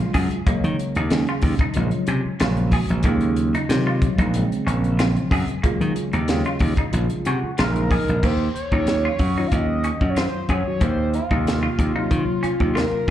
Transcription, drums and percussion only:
0.14 kick medium
0.14 open hi-hat medium
0.31 closed hi-hat soft
0.47 kick loud
0.47 closed hi-hat medium
0.64 closed hi-hat soft
0.79 closed hi-hat medium
0.95 closed hi-hat soft
1.10 snare loud
1.10 closed hi-hat medium
1.27 closed hi-hat soft
1.42 kick medium
1.42 open hi-hat medium
1.58 kick medium
1.58 closed hi-hat soft
1.74 closed hi-hat medium
1.91 closed hi-hat soft
2.07 closed hi-hat medium
2.40 snare loud
2.40 closed hi-hat medium
2.57 closed hi-hat soft
2.71 kick medium
2.71 open hi-hat medium
2.89 closed hi-hat soft
3.03 kick loud
3.03 closed hi-hat medium
3.21 closed hi-hat soft
3.36 closed hi-hat medium
3.54 closed hi-hat soft
3.70 snare loud
3.70 closed hi-hat medium
4.02 kick medium
4.02 closed hi-hat medium
4.18 kick medium
4.18 closed hi-hat soft
4.34 closed hi-hat medium
4.52 closed hi-hat soft
4.68 closed hi-hat medium
4.84 closed hi-hat soft
4.99 snare loud
4.99 closed hi-hat medium
5.16 closed hi-hat soft
5.31 kick medium
5.31 open hi-hat medium
5.48 closed hi-hat soft
5.64 kick medium
5.64 closed hi-hat medium
5.81 closed hi-hat soft
5.96 closed hi-hat medium
6.13 closed hi-hat soft
6.28 snare loud
6.28 closed hi-hat medium
6.45 closed hi-hat soft
6.59 kick medium
6.59 open hi-hat medium
6.77 kick medium
6.77 closed hi-hat soft
6.93 closed hi-hat medium
7.10 closed hi-hat soft
7.25 closed hi-hat medium
7.58 snare loud
7.58 closed hi-hat medium
7.76 closed hi-hat soft
7.91 kick medium
7.91 open hi-hat medium
8.08 closed hi-hat soft
8.23 kick medium
8.23 crash medium
8.56 closed hi-hat soft
8.72 kick medium
8.87 snare medium
8.87 closed hi-hat medium
9.19 kick medium
9.19 open hi-hat medium
9.52 kick medium
9.52 closed hi-hat medium
9.84 closed hi-hat medium
10.01 kick medium
10.16 snare loud
10.16 closed hi-hat medium
10.49 kick medium
10.49 closed hi-hat medium
10.81 kick medium
10.81 closed hi-hat medium
11.14 closed hi-hat medium
11.31 kick medium
11.47 snare loud
11.47 closed hi-hat medium
11.79 kick medium
11.79 closed hi-hat medium
12.11 kick medium
12.11 closed hi-hat medium
12.44 closed hi-hat medium
12.60 kick medium
12.77 snare loud
12.77 closed hi-hat medium

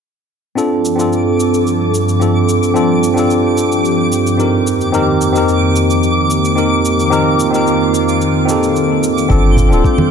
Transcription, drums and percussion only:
0.58 shaker soft
0.85 shaker medium
1.00 shaker soft
1.13 shaker soft
1.40 shaker medium
1.54 shaker soft
1.67 shaker soft
1.94 shaker medium
2.09 shaker soft
2.22 shaker soft
2.49 shaker medium
2.63 shaker soft
2.76 shaker soft
3.03 shaker medium
3.18 shaker soft
3.30 shaker soft
3.58 shaker medium
3.72 shaker soft
3.85 shaker soft
4.12 shaker medium
4.27 shaker soft
4.40 shaker soft
4.67 shaker medium
4.81 shaker soft
4.94 shaker soft
5.21 shaker medium
5.36 shaker soft
5.49 shaker soft
5.76 shaker medium
5.90 shaker soft
6.03 shaker soft
6.30 shaker medium
6.45 shaker soft
6.58 shaker soft
6.85 shaker medium
7.00 shaker soft
7.13 shaker soft
7.40 shaker medium
7.54 shaker soft
7.67 shaker soft
7.94 shaker medium
8.09 shaker soft
8.21 shaker soft
8.49 shaker medium
8.63 shaker soft
8.76 shaker soft
9.03 shaker medium
9.18 shaker soft
9.30 kick medium
9.30 shaker soft
9.57 low conga medium
9.57 shaker medium
9.73 shaker soft
9.84 kick loud
9.84 shaker soft
9.98 high conga medium

